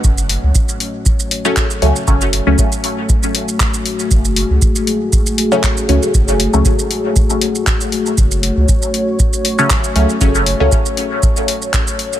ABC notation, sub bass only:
X:1
M:4/4
L:1/16
Q:"Swing 16ths" 1/4=118
K:F#m
V:1 name="Sub bass" clef=bass
F,,,3 C,, z8 z2 C,, z | F,,,3 C,, z12 | F,,,3 C,, z8 z2 C,, z | F,,,3 C,, z12 |
F,,,3 C,, z8 z2 C,, z | F,,,3 C,, z12 |]